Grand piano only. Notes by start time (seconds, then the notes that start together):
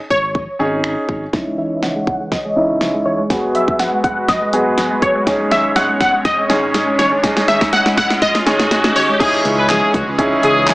0.59 C#4 D#4 G#4
1.33 C#4 D#4 E4
2.56 C#4 D#4 E4
3.30 B3 F#4 G#4
4.53 B3 F#4 G#4
5.27 C#4 D#4 G#4
6.49 C#4 D#4 G#4
7.23 C#4 D#4 G#4
8.46 C#4 D#4 G#4
9.20 C#4 D#4 E4 G#4
10.18 C#4 D#4 E4 G#4